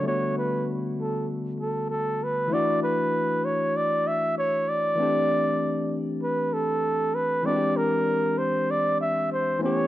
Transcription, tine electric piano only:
X:1
M:4/4
L:1/8
Q:"Swing 16ths" 1/4=97
K:D
V:1 name="Tine electric piano"
[D,G,A,B,F]8 | [E,A,DEF]8 | [E,A,=CDG]8 | [E,^G,^B,DF=G]6- [E,^G,B,DF=G] [E,A,=B,CG] |]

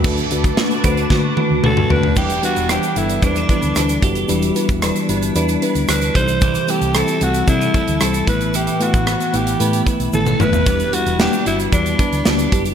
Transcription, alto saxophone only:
X:1
M:4/4
L:1/16
Q:1/4=113
K:Bphr
V:1 name="Alto saxophone"
z12 A2 B2 | G2 F2 G2 E2 D4 D3 z | z12 B2 c2- | c2 G2 A2 F2 E4 A2 B2 |
G2 F4 G4 z2 A2 B2- | B2 F2 G2 E2 D4 D3 z |]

